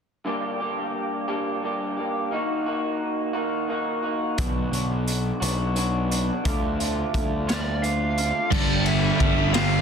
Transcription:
0.25 G2 D3 G3 A#3 D4 G4
0.60 G3 A#3 D4 G4
1.28 G2 D3 G3 A#3 D4 G4
1.62 G3 A#3 D4 G4
1.97 G3 A#3 D4 G4
2.31 D#3 A#3 D#4 F#4
2.66 A#3 D#4 F#4
3.33 D#3 A#3 D#4 F#4
3.68 D#3 A#3 D#4 F#4
4.03 A#3 D#4 F#4
4.38 B1 B2 F#4, kick, closed hi-hat
4.72 B1 B3 D4 F#4, closed hi-hat
5.08 closed hi-hat
5.40 B1 B2 F#3 B3 D4 F#4, closed hi-hat
5.75 F#3 B3 D4 F#4, closed hi-hat
6.09 B3 D4 F#4, closed hi-hat
6.44 D2 D3 A3 D4 F4, kick, closed hi-hat
6.79 A3 D4 F4, closed hi-hat
7.14 D2, kick, closed hi-hat
7.47 D3 A3 D4 F4 D5, snare, closed hi-hat
7.82 D3 A3 D4 F4 F5, closed hi-hat
8.17 A3 D4 F4, closed hi-hat
8.50 G1 G2 D3 G3 D4 A#4 D5 G5, kick, crash
8.86 E5, ride
9.19 G1 G2 D3 G3, kick, ride
9.54 G2 D3 G3 F5, snare, ride

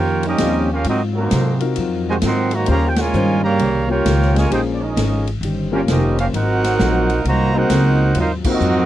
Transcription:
Already playing: F2 D#3 A#3 C#4 F4 G4 A#4 C5 C#5 G5
0.23 G3 A#3 D#4, ride
0.28 C#4 G4 A#4 D#5
0.38 D#2 C#3 D#3 F3 G3 A#3 C4 C#4 F4 G4 C5, snare, hi-hat pedal, ride
0.71 A#3 C#4 F4 G4 A#4 F5
0.84 G#2 F#3 C4 D#4 F4, ride
0.88 C4 F#4 A#4 D#5
1.12 F#3 C4 F#4 A#4
1.17 D#3 F#3 A#3 C4 D#4 F#4 C5
1.30 G#2 C3 F#3 C4 F4, snare, hi-hat pedal, ride
1.60 C4 D#4 F4 F#4 A#4, ride
1.76 F2 G#2 F#3 C4 F4, ride
2.09 C3 D#3 G#3 F#4 C5 D#5 G#5
2.21 G#2 D#3 F#3 C4 F4, snare, hi-hat pedal, ride
2.26 A#4 D#5 F#5 C6
2.51 F#4 C5, ride
2.55 D#3 F#3 A#3 D#5 A#5
2.66 D#2 D#3 G3 A#3 C#4 F4 G4 C5, ride
2.70 C#3 G3 A#3 G4 C5 C#5 F5 A#5
2.89 G5
2.96 F4 A#4 C#5 G#5, snare, ride
3.01 A#2 C#3 G#3
3.13 G2 D#3 G3 C#4 F4 G4 C5, hi-hat pedal
3.44 C#3 G3 A#3 G4 C#5 F5 A#5
3.58 C2 D#3 C#4 G4 C5, ride
3.88 A#3 C#4 F4 G4 A#4 C#5 G5
4.05 C#2 D#3 C#4 G4 C5, snare, hi-hat pedal, ride
4.22 snare
4.34 G#3 C#4 F4 G#4 A#4 C#5, snare, ride
4.38 G#5
4.49 A#1 A#2 G#3 A#3 C#4 D#4 F4 G4 G#4 C5, ride
4.53 F4 G#4 C5 G5
4.74 D5
4.80 F3 G#3 C#4 D#4 G#4 A#4 D#5
4.96 G#1 A#2 G#3 C#4 F4, snare, hi-hat pedal, ride
5.27 ride
5.41 G1 D#3 C#4 G4, ride
5.46 C5
5.71 G3 A#3 C#4 F4 G4 A#4 C#5
5.88 F1 D#3 G3 A#3 C#4 D#4 F4 G4 A#4 C5 D#5, snare, hi-hat pedal, ride
6.19 A#3 C#4 F4 G4 A#4 F5, ride
6.32 G#1 G#2 F#3 C4 D#4 F4 F#4, ride
6.36 D#4 A#4 C5 F#5
6.64 F#3 C4 F#4 A#4, snare, ride
6.77 A#1 G#2 F#3 C4 F4, snare, hi-hat pedal
7.10 ride
7.24 C2 G#2 D#3 F#3 A#3 C4 F4 C5, ride
7.28 F#4 D#5 A#5
7.54 A#3 C4 D#4 F#4 G#4 A#4 C5
7.58 C5 F#5
7.69 C#2 G#2 F#3 C4 F4, snare, hi-hat pedal, ride
8.14 D#2 G#2 F#3 C4 F4, ride
8.20 D#4 A#4 C5 F5
8.44 A#3 C4 D#4 F4 F#4 A#4 C5, kick, crash
8.50 C4 F#4 A#4 D#5
8.60 F2 G#2 F#3 C4 F4, hi-hat pedal

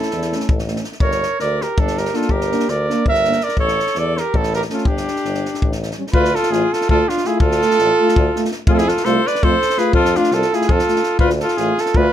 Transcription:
Already playing: A3 E4 A4
0.02 snare
0.11 E2, snare
0.22 snare
0.32 A3 C#4, snare
0.40 snare
0.49 A1, kick
0.59 snare
0.68 A3 C#4, snare
0.76 snare
0.84 snare
0.92 snare
1.00 G1 A#4 C#5, kick
1.12 snare
1.23 snare
1.39 D2 A#4 D5, snare
1.61 G4 A#4, snare
1.78 G1 D4 A4, kick
1.87 snare
1.97 G4 A#4, snare
2.05 snare
2.13 A#3 D4 F4 A4, snare
2.22 snare
2.29 G1 G4 A#4, kick
2.41 snare
2.51 A#3 D4, snare
2.60 snare
2.68 D2 A#4 D5, snare
2.90 A#3 D4, snare
3.06 G1 A#4 E5, kick
3.15 snare
3.25 A#3 D4, snare
3.32 snare
3.40 A#4 D5, snare
3.49 snare
3.57 A1 A4 C#5, kick
3.68 snare
3.79 snare
3.87 snare
3.95 E2 A4 D5, snare
4.17 A#4, snare
4.22 G4
4.34 A1 E4 A4, kick
4.43 snare
4.54 G4 A#4, snare
4.62 snare
4.70 A3 C#4 F4 A4, snare
4.78 snare
4.85 G1 D4 G4, kick
4.97 snare
5.08 snare
5.16 snare
5.25 G1, snare
5.35 snare
5.45 snare
5.54 snare
5.62 A1, kick
5.72 snare
5.83 snare
5.91 snare
5.98 G3 C#4
6.07 snare
6.13 D2 A3 F4 B4, kick
6.25 snare
6.35 F4 A4, snare
6.43 snare
6.51 A1 A3 F4 G#4, snare
6.73 F4 A4, snare
6.81 snare
6.89 D2 A3 F4 A4, kick
7.08 D4 F4, snare
7.17 snare
7.24 A3 E4 F4 G#4, snare
7.40 D2 F4 A4, kick
7.51 snare
7.62 A3 F4, snare
7.71 snare
7.79 A1, snare
8.01 A3 F4
8.08 snare
8.16 D2, kick
8.36 A3 F4, snare
8.45 snare
8.51 snare
8.67 F2 A3 F4 G#4, kick
8.73 F4 A4
8.78 E4 G#4, snare
8.88 F4 A4, snare
8.97 snare
9.05 C2 A3 F4 A4 C5, snare
9.27 B4 D5, snare
9.35 snare
9.43 F2 A3 F4 A4 C5, kick
9.62 snare
9.70 snare
9.78 A3 F4 G#4 B4, snare
9.93 F2 F4 A4, kick
10.05 snare
10.15 A3 D4 F4, snare
10.24 snare
10.31 C2 F4 A4, snare
10.42 snare
10.53 A3 E4 F4 G#4, snare
10.62 snare
10.69 F2 F4 A4, kick
10.79 snare
10.88 A3 F4, snare
10.96 snare
11.03 snare
11.19 D2 A3 F4 B4, kick
11.30 snare
11.40 F4 A4, snare
11.48 snare
11.57 A1 A3 F4 G#4, snare
11.78 A4, snare
11.82 F4
11.86 snare
11.94 D2 A3 F4 B4, kick

